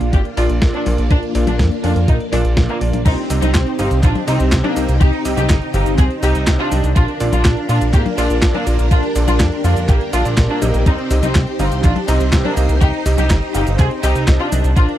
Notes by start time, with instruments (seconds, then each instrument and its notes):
Already playing: electric grand piano A#2 A#3 D4 F4 F5, string machine A#3 D4 F4
0.01 analog synth bass A#1, closed hi-hat
0.13 analog synth bass G#1, violin section G4, kick, closed hi-hat
0.25 closed hi-hat
0.37 analog synth bass A#1, electric grand piano A#2 A#3 D4 F4 D5, violin section F4, open hi-hat
0.49 analog synth bass A#1, closed hi-hat
0.62 analog synth bass A#1, kick, snare, closed hi-hat
0.74 violin section D4, closed hi-hat
0.86 analog synth bass A#1, electric grand piano A#2 A#3 D4 F4 D5, open hi-hat, high tom
0.98 analog synth bass A#1, closed hi-hat
1.11 analog synth bass A#1, violin section D4, kick, closed hi-hat
1.23 closed hi-hat
1.35 analog synth bass A#1, electric grand piano A#2 A#3 D4 F4 D5, open hi-hat
1.47 analog synth bass A#1, violin section D4, closed hi-hat, high tom
1.59 analog synth bass F2, kick, snare, closed hi-hat
1.72 closed hi-hat
1.84 analog synth bass F2, electric grand piano A#2 A#3 D4 F4 F5, violin section D4, open hi-hat
1.96 analog synth bass F2, closed hi-hat
2.08 analog synth bass A#1, violin section D#4, kick, closed hi-hat
2.20 closed hi-hat
2.33 analog synth bass A#1, electric grand piano A#2 A#3 D4 F4 D5, violin section D4, open hi-hat, high tom
2.45 analog synth bass A#1, closed hi-hat
2.57 analog synth bass A#1, kick, snare, closed hi-hat, high tom
2.69 violin section A#3, closed hi-hat
2.81 analog synth bass A#1, electric grand piano A#3 D4 F4 D5, open hi-hat
2.93 analog synth bass A#1, closed hi-hat, high tom
3.06 analog synth bass C2, string machine C4 D#4 G4, violin section C4 D#4, kick, closed hi-hat, crash, cabasa
3.18 closed hi-hat
3.30 analog synth bass C2, electric grand piano C3 C4 D#4 G4 D#5, open hi-hat, cabasa
3.42 analog synth bass C2, violin section C4 D#4, closed hi-hat, high tom, cabasa
3.54 analog synth bass C2, kick, snare, clap, closed hi-hat, cabasa
3.67 closed hi-hat
3.79 analog synth bass G1, electric grand piano C3 C4 D#4 G4 F5, violin section C4 D#4, open hi-hat, cabasa
3.91 analog synth bass C2, closed hi-hat, cabasa
4.03 analog synth bass A#1, violin section D4 F4, kick, clap, closed hi-hat, cabasa
4.15 closed hi-hat, high tom
4.28 analog synth bass C2, electric grand piano C3 C4 D#4 G4 D#5, violin section C4 D#4, open hi-hat, cabasa
4.40 analog synth bass C2, closed hi-hat, cabasa
4.52 analog synth bass C2, kick, snare, clap, closed hi-hat, cabasa
4.64 violin section A#3 D4, closed hi-hat, high tom
4.76 analog synth bass C2, electric grand piano C3 C4 D#4 G4 D#5, open hi-hat, cabasa
4.89 analog synth bass C2, closed hi-hat, cabasa
5.01 analog synth bass C2, violin section D#4 G4, kick, closed hi-hat, cabasa
5.13 closed hi-hat
5.25 analog synth bass C2, electric grand piano C3 C4 D#4 G4 D#5, open hi-hat, cabasa
5.37 analog synth bass C2, violin section D#4 G4, closed hi-hat, high tom, cabasa
5.50 analog synth bass G1, kick, snare, clap, closed hi-hat, cabasa
5.62 closed hi-hat
5.74 analog synth bass G1, electric grand piano C3 C4 D#4 G4 F5, violin section D#4 G4, open hi-hat, cabasa
5.86 analog synth bass G1, closed hi-hat, cabasa
5.98 analog synth bass C2, violin section C4 G#4, kick, clap, closed hi-hat, cabasa
6.11 closed hi-hat
6.23 analog synth bass C2, electric grand piano C3 C4 D#4 G4 D#5, violin section D#4 G4, open hi-hat, cabasa
6.35 analog synth bass C2, closed hi-hat, cabasa
6.47 analog synth bass C2, kick, snare, clap, closed hi-hat, cabasa
6.59 violin section D4 F4, closed hi-hat
6.71 analog synth bass C2, electric grand piano C4 D#4 G4 D#5, open hi-hat, high tom, cabasa
6.84 analog synth bass C2, closed hi-hat, cabasa
6.96 analog synth bass A#1, violin section D4 F4, string machine D4 F4 A#4, kick, closed hi-hat, cabasa
7.08 closed hi-hat
7.20 analog synth bass A#1, electric grand piano A#2 A#3 D4 F4 D5, open hi-hat, cabasa
7.33 analog synth bass A#1, violin section D4 F4, closed hi-hat, high tom, cabasa
7.45 analog synth bass A#1, kick, snare, clap, closed hi-hat, cabasa
7.57 closed hi-hat
7.69 analog synth bass A#2, electric grand piano A#2 A#3 D4 F4 F5, violin section D4 F4, open hi-hat, cabasa
7.81 analog synth bass A#1, closed hi-hat, cabasa
7.94 analog synth bass G#1, violin section A#3 G4, kick, clap, closed hi-hat, cabasa
8.06 closed hi-hat, high tom
8.18 analog synth bass A#1, electric grand piano A#2 A#3 D4 F4 D5, violin section D4 F4, open hi-hat, cabasa
8.30 analog synth bass A#1, closed hi-hat, cabasa
8.42 analog synth bass A#1, kick, snare, clap, closed hi-hat, cabasa
8.54 violin section A#3 D4, closed hi-hat, high tom
8.67 analog synth bass A#1, electric grand piano A#2 A#3 D4 F4 D5, open hi-hat, cabasa
8.79 analog synth bass A#1, closed hi-hat, cabasa
8.91 analog synth bass A#1, violin section D4 F4, string machine G4, kick, closed hi-hat, cabasa
9.03 closed hi-hat
9.16 analog synth bass A#1, electric grand piano A#2 A#3 D4 F4 D5, open hi-hat, cabasa
9.28 analog synth bass A#1, violin section D4 F4, closed hi-hat, high tom, cabasa
9.40 analog synth bass F2, kick, snare, clap, closed hi-hat, cabasa
9.52 closed hi-hat
9.64 analog synth bass F2, electric grand piano A#2 A#3 D4 F4 F5, violin section D4 F4, open hi-hat, cabasa
9.77 analog synth bass F2, closed hi-hat, cabasa
9.89 analog synth bass A#1, violin section A#3 G4, kick, clap, closed hi-hat, cabasa
10.01 closed hi-hat
10.13 analog synth bass A#1, electric grand piano A#2 A#3 D4 F4 F5, violin section D4 F4, open hi-hat, cabasa
10.25 analog synth bass A#1, electric grand piano A#2 A#3 D4 F4 D5, closed hi-hat, cabasa
10.37 analog synth bass A#1, kick, snare, clap, closed hi-hat, cabasa
10.50 violin section A#3 D4, closed hi-hat
10.62 analog synth bass A#1, electric grand piano C3 C4 D#4 G4 D#5, open hi-hat, high tom, cabasa
10.74 analog synth bass A#1, closed hi-hat, cabasa
10.86 analog synth bass C2, violin section C4 D#4, string machine D#4 C5, kick, closed hi-hat, cabasa
10.98 closed hi-hat
11.11 analog synth bass C2, electric grand piano C3 C4 D#4 G4 D#5, open hi-hat, cabasa
11.23 analog synth bass C2, violin section C4 D#4, closed hi-hat, high tom, cabasa
11.35 analog synth bass C2, kick, snare, clap, closed hi-hat, cabasa
11.47 closed hi-hat
11.59 analog synth bass G1, electric grand piano C3 C4 D#4 G4 F5, violin section C4 D#4, open hi-hat, cabasa
11.72 analog synth bass C2, closed hi-hat, cabasa
11.84 analog synth bass A#1, violin section D4 F4, kick, clap, closed hi-hat, cabasa
11.96 closed hi-hat, high tom
12.08 analog synth bass C2, electric grand piano C3 C4 D#4 G4 D#5, violin section C4 D#4, open hi-hat, cabasa
12.20 analog synth bass C2, closed hi-hat, cabasa
12.33 analog synth bass C2, kick, snare, clap, closed hi-hat, cabasa
12.45 violin section A#3 D4, closed hi-hat, high tom
12.57 analog synth bass C2, electric grand piano C3 C4 D#4 G4 D#5, open hi-hat, cabasa
12.69 analog synth bass C2, closed hi-hat, cabasa
12.81 analog synth bass C2, violin section D#4 G4, kick, closed hi-hat, cabasa
12.94 closed hi-hat
13.06 analog synth bass C2, electric grand piano C3 C4 D#4 G4 D#5, open hi-hat, cabasa
13.18 analog synth bass C2, violin section D#4 G4, closed hi-hat, high tom, cabasa
13.30 analog synth bass G1, kick, snare, clap, closed hi-hat, cabasa
13.42 closed hi-hat
13.55 analog synth bass G1, electric grand piano C3 C4 D#4 G4 F5, violin section D#4 G4, open hi-hat, cabasa
13.67 analog synth bass G1, closed hi-hat, cabasa
13.79 analog synth bass C2, violin section C4 G#4, kick, clap, closed hi-hat, cabasa
13.91 closed hi-hat
14.03 analog synth bass C2, electric grand piano C3 C4 D#4 G4 D#5, violin section D#4 G4, open hi-hat, cabasa
14.16 analog synth bass C2, closed hi-hat, cabasa
14.28 analog synth bass C2, kick, snare, clap, closed hi-hat, cabasa
14.40 violin section D4 F4, closed hi-hat
14.52 analog synth bass C2, electric grand piano C4 D#4 G4 D#5, open hi-hat, high tom, cabasa
14.64 analog synth bass C2, closed hi-hat, cabasa
14.76 analog synth bass A#1, string machine D4 F4 A#4, violin section D4 F4, kick, closed hi-hat, cabasa
14.89 closed hi-hat